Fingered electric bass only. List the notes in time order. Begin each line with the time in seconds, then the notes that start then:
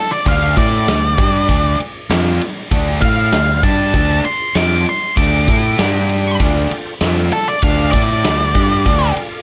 0.26 D2
0.57 A2
0.87 D2
1.18 G2
1.49 D2
1.80 muted fingered electric bass stroke
2.10 F2
2.71 D2
3.02 A2
3.32 D2
3.63 G2
3.94 D2
4.25 muted fingered electric bass stroke
4.55 F2
5.17 D2
5.48 A2
5.79 G2
6.40 D2
6.71 muted fingered electric bass stroke
7.01 F2
7.63 D2
7.93 A2
8.24 D2
8.55 G2
8.86 D2
9.16 muted fingered electric bass stroke